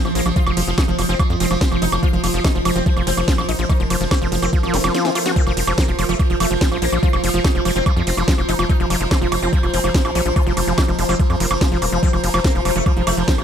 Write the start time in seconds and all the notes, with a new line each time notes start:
Already playing: F3 F4 C5 D#6
0.05 A#1 F3, closed hi-hat, high woodblock
0.15 A#1 F3 A#3, open hi-hat, ride
0.26 A#1 F3, closed hi-hat, high woodblock
0.36 F3 F4, kick, closed hi-hat
0.47 F1 F3, closed hi-hat, high woodblock
0.57 F1 F3, open hi-hat, ride
0.67 F1 F3, closed hi-hat
0.78 F3 D#4, kick, snare, closed hi-hat, high woodblock
0.88 F1 F3, closed hi-hat
0.99 F1 F3, open hi-hat, ride, high woodblock
1.09 F1 F3 C4, closed hi-hat
1.19 F3, kick, closed hi-hat, high woodblock
1.30 F2 F3, closed hi-hat
1.40 F1 F3 C4, open hi-hat, ride
1.51 F1 F3, closed hi-hat, high woodblock
1.61 F3, kick, snare, closed hi-hat
1.71 F1 F3, closed hi-hat, high woodblock
1.82 F1 F3 D#4, open hi-hat, ride
1.92 F1 F3, closed hi-hat, high woodblock
2.03 F3 F4 A#4, kick, closed hi-hat
2.13 F1 F3, closed hi-hat
2.24 F1 F3, open hi-hat, ride, high woodblock
2.34 F1 F3, closed hi-hat
2.44 F3 D#4, kick, snare, closed hi-hat, high woodblock
2.55 F1 F3, closed hi-hat
2.65 F1 F3, open hi-hat, ride, high woodblock
2.76 F1 F3 C4, closed hi-hat
2.86 F3, kick, closed hi-hat
2.97 F1 F3, closed hi-hat, high woodblock
3.07 F1 F3 C4, open hi-hat, ride
3.17 F1 F3, closed hi-hat, high woodblock
3.28 F3, kick, snare, closed hi-hat
3.38 A#1 F3, closed hi-hat, high woodblock
3.49 A#1 F3 D#4, open hi-hat, ride
3.59 A#1 F3, closed hi-hat
3.69 F3 D#4, kick, closed hi-hat, high woodblock
3.80 F1 F3, closed hi-hat
3.90 F1 F3, open hi-hat, ride, high woodblock
4.01 F1 F3, closed hi-hat
4.11 F3 C4, kick, snare, closed hi-hat, high woodblock
4.22 F1 F3, closed hi-hat
4.32 F1 F3, open hi-hat, ride
4.42 F1 F3 C4, closed hi-hat, high woodblock
4.53 F3, kick, closed hi-hat, swell
4.63 A1 F3, closed hi-hat, high woodblock
4.74 F1 A3, snare, open hi-hat, ride
4.84 F1 F3, snare, closed hi-hat, high woodblock
4.94 F3, snare, closed hi-hat
5.05 D#3 F3, snare, closed hi-hat
5.15 A3 F4, open hi-hat, ride, high woodblock
5.26 F3 F#4, snare, closed hi-hat
5.36 F3 C4 F4, kick, closed hi-hat
5.47 F1 F3, closed hi-hat, high woodblock
5.57 F1 F3, open hi-hat, ride
5.67 F1 F3, closed hi-hat, high woodblock
5.78 F3 A#3, kick, snare, closed hi-hat
5.88 F1 F3, closed hi-hat
5.99 F1 F3, open hi-hat, ride, high woodblock
6.09 F1 F3 A3, closed hi-hat
6.19 F3, kick, closed hi-hat, high woodblock
6.30 F1 F3, closed hi-hat
6.34 A#5
6.40 F1 F3 A3, open hi-hat, ride, high woodblock
6.51 F1 F3, closed hi-hat
6.61 F3, kick, snare, closed hi-hat
6.72 A#1 F3, closed hi-hat, high woodblock
6.82 A#1 F3 A#3, open hi-hat, ride
6.92 A#1 F3, closed hi-hat, high woodblock
7.03 F3 F4, kick, closed hi-hat
7.13 F1 F3, closed hi-hat, high woodblock
7.24 F1 F3, open hi-hat, ride
7.34 F1 F3, closed hi-hat
7.44 F3 D#4, kick, snare, closed hi-hat, high woodblock
7.55 F1 F3, closed hi-hat
7.65 F1 F3, open hi-hat, ride, high woodblock
7.76 F1 F3 C4, closed hi-hat
7.86 F3, kick, closed hi-hat, high woodblock
7.97 F2 F3, closed hi-hat
8.07 F1 F3 C4, open hi-hat, ride
8.17 F1 F3, closed hi-hat, high woodblock
8.28 F3, kick, snare, closed hi-hat
8.38 F1 F3, closed hi-hat, high woodblock
8.49 F1 F3 D#4, open hi-hat, ride
8.59 F1 F3, closed hi-hat, high woodblock
8.69 F3 D#4, kick, closed hi-hat
8.80 F1 F3, closed hi-hat
8.90 F1 F3, open hi-hat, ride, high woodblock
9.01 F1 F3, closed hi-hat
9.11 F3 C4, kick, snare, closed hi-hat, high woodblock
9.22 F1 F3, closed hi-hat
9.32 F1 F3, open hi-hat, ride, high woodblock
9.42 F1 F3 C4, closed hi-hat
9.53 F3, kick, closed hi-hat
9.63 F1 F3, closed hi-hat, high woodblock
9.74 F1 F3 C4, open hi-hat, ride
9.84 F1 F3, closed hi-hat, high woodblock
9.94 F3, kick, snare, closed hi-hat
10.05 A#1 F3, closed hi-hat, high woodblock
10.15 A#1 F3 C#4, open hi-hat, ride
10.26 A#1 F3, closed hi-hat
10.36 F3 F4, kick, closed hi-hat, high woodblock
10.47 F1 F3, closed hi-hat
10.57 F1 F3, open hi-hat, ride, high woodblock
10.67 F1 F3, closed hi-hat
10.78 F3 D#4, kick, snare, closed hi-hat, high woodblock
10.88 F1 F3, closed hi-hat
10.99 F1 F3, open hi-hat, ride
11.09 F1 F3 C4, closed hi-hat, high woodblock
11.19 F3, kick, closed hi-hat
11.30 F2 F3, closed hi-hat, high woodblock
11.40 F1 F3 A#3, open hi-hat, ride
11.51 F#1 F3, closed hi-hat, high woodblock
11.61 F3, kick, snare, closed hi-hat
11.72 F1 F3, closed hi-hat
11.82 D#1 F3 A#3, open hi-hat, ride, high woodblock
11.92 F1 F3, closed hi-hat
12.03 F3 C4 A#4, kick, closed hi-hat
12.13 F1 F3, closed hi-hat, high woodblock
12.24 F1 F3, open hi-hat, ride
12.34 F1 F3, closed hi-hat, high woodblock
12.44 F3 A#3, kick, snare, closed hi-hat
12.55 F1 F3, closed hi-hat
12.65 F1 F3, open hi-hat, ride, high woodblock
12.76 F1 F3 A3, closed hi-hat
12.86 F3, kick, closed hi-hat, high woodblock
12.96 F1 F3, closed hi-hat
13.07 F1 F3 A3, open hi-hat, ride, high woodblock
13.17 F1 F3, closed hi-hat
13.28 F3, kick, snare, closed hi-hat
13.38 A#1 F3, closed hi-hat, high woodblock